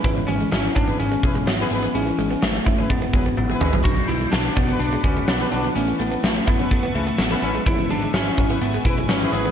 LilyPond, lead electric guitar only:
\new Staff \with { instrumentName = "Lead electric guitar" } { \time 4/4 \key e \mixolydian \tempo 4 = 126 e'8 cis'8 cis'8 d'8 cis'4 b4 | cis'4 a4 b4 b8 cis'8 | fis'8 e'8 d'8 b8 d'8 cis'8 b8 d'8 | cis'8 b8 a8 b8 b8 a8 b8 cis'8 |
e'8 d'8 cis'4 b8 e'8 cis'8 gis'8 | }